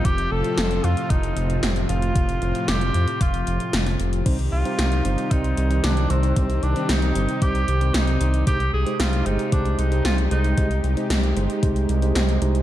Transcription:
<<
  \new Staff \with { instrumentName = "Tenor saxophone" } { \time 4/4 \key c \minor \tempo 4 = 114 g'8 a'4 f'8 ees'4 r8 f'8~ | f'4 g'4 f'4. r8 | r8 f'4. ees'4 d'8 c'8~ | c'8 d'8 ees'4 g'4 ees'4 |
g'8 aes'8 f'8 ees'8 d'8 ees'8 f'8 ees'8~ | ees'8 r2. r8 | }
  \new Staff \with { instrumentName = "Tine electric piano" } { \time 4/4 \key c \minor r1 | r1 | <g c' ees' c''>16 r8 <g c' ees' c''>8. <g c' ees' c''>8 <g c' ees' c''>8. <g c' ees' c''>8. <g c' ees' c''>8 | <g c' ees' c''>16 r8 <g c' ees' c''>8. <g c' ees' c''>8 <g c' ees' c''>8. <g c' ees' c''>8. <g c' ees' c''>8 |
<aes ees' g' c''>16 r8 <aes ees' g' c''>8. <aes ees' g' c''>8 <aes ees' g' c''>8. <aes ees' g' c''>8. <aes ees' g' c''>8 | <aes ees' g' c''>16 r8 <aes ees' g' c''>8. <aes ees' g' c''>8 <aes ees' g' c''>8. <aes ees' g' c''>8. <aes ees' g' c''>8 | }
  \new Staff \with { instrumentName = "Supersaw synth" } { \time 4/4 \key c \minor << { <c f c' f'>1~ | <c f c' f'>1 | <ees ees' g'>1~ | <ees ees' g'>1 |
<aes ees' g'>1~ | <aes ees' g'>1 | } \\ { r1 | r1 | c1~ | c1~ |
c1~ | c1 | } >> }
  \new Staff \with { instrumentName = "Analog synth bass" } { \clef bass \time 4/4 \key c \minor f,,8 f,,8 f,,8 f,8 f,,8 f,,8 f,,8 f,,8 | f,,8 f,,8 f,,8 f,8 f,,8 f,,8 f,,8 f,,8 | c,8 c,8 c,8 g,,8 c,8 c,8 c,8 c,8 | c,8 c,8 c,8 g,,8 c,8 c,8 c,8 c,8 |
c,8 c,8 c,8 g,,8 c,8 c,8 c,8 c,8 | c,8 c,8 c,8 g,,8 c,8 c,8 c,8 c,8 | }
  \new DrumStaff \with { instrumentName = "Drums" } \drummode { \time 4/4 <hh bd>16 hh8 hh16 <hh sn>16 hh16 hh16 hh16 <hh bd>16 hh16 hh16 hh16 <hh sn>16 hh16 hh16 hh16 | <hh bd>16 hh16 hh16 hh16 <hh sn>16 hh16 hh16 hh16 <hh bd>16 hh16 hh16 hh16 <hh sn>16 <hh sn>16 hh16 hh16 | <cymc hh bd>16 hh8 hh16 <hh sn>16 hh16 hh16 hh16 <hh bd>16 hh16 hh16 hh16 <hh sn>16 hh16 hh16 hh16 | <hh bd>16 hh16 hh16 hh16 <hh sn>16 hh16 hh16 hh16 <hh bd>16 hh16 hh16 hh16 <hh sn>16 hh16 hh16 hh16 |
<hh bd>16 hh8 hh16 <hh sn>16 hh16 hh16 hh16 <hh bd>16 hh16 hh16 hh16 <hh sn>16 hh16 hh16 hh16 | <hh bd>16 hh16 hh16 hh16 <hh sn>16 hh16 hh16 hh16 <hh bd>16 hh16 hh16 hh16 <hh sn>16 hh16 hh16 hh16 | }
>>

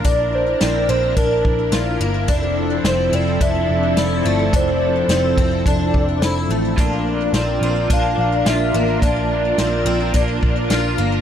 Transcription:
<<
  \new Staff \with { instrumentName = "Soft synth lead" } { \time 4/4 \key bes \lydian \tempo 4 = 107 d''8 c''8 d''8 c''8 bes'4. r8 | r4 c''8 d''8 e''8 e''8 d''4 | c''2. r4 | r4 d''4 f''8 f''8 e''4 |
d''2. r4 | }
  \new Staff \with { instrumentName = "String machine" } { \time 4/4 \key bes \lydian << { <d' bes'>1 | <f c' a'>1~ | <f c' a'>1 | <d' bes'>1~ |
<d' bes'>1 | } \\ { e'1~ | e'1~ | e'1 | f'1~ |
f'1 | } >> }
  \new Staff \with { instrumentName = "Twelve-string acoustic guitar" } { \time 4/4 \key bes \lydian d'4 c'8 c'8 d'4 f'8 bes8 | d'4 c'8 c'8 d'4 e'8 a8 | d'4 c'8 c'8 d'4 e'8 a8 | d'4 c'8 c'8 d'4 f'8 bes8 |
d'4 c'8 c'8 d'4 f'8 bes8 | }
  \new Staff \with { instrumentName = "Clean electric guitar" } { \time 4/4 \key bes \lydian r1 | r1 | r1 | <bes, f bes d' f'>4. <bes d' f'>8 <f bes d' f'>4 <f bes d' f'>4 |
<bes, f bes d' f'>2 <f bes d' f'>4 <f bes d' f'>4 | }
  \new Staff \with { instrumentName = "Picked electric bass" } { \clef bass \time 4/4 \key bes \lydian bes,,4 bes,,8 bes,,8 bes,,8 bes,,8 bes,,8 g,,8 | f,,4 f,,8 f,,8 f,,8 f,,8 f,,8 g,,8 | f,,4 f,,8 f,,8 f,,8 f,,8 f,,8 a,,8 | bes,,4 bes,,8 bes,,8 bes,,8 bes,,8 bes,,8 a,,8 |
bes,,4 bes,,8 bes,,8 bes,,8 bes,,8 bes,,8 g,,8 | }
  \new DrumStaff \with { instrumentName = "Drums" } \drummode { \time 4/4 <hh bd>4 <hh sn>4 <hh bd>8 bd8 <hh sn>4 | <hh bd>4 <hh sn>4 <hh bd>4 <hh sn>4 | <hh bd>4 <hh sn>8 bd8 <hh bd>8 bd8 <hh sn>4 | <hh bd>4 <hh sn>4 <hh bd>4 <hh sn>4 |
<hh bd>4 <hh sn>4 <hh bd>8 bd8 <hh sn>4 | }
>>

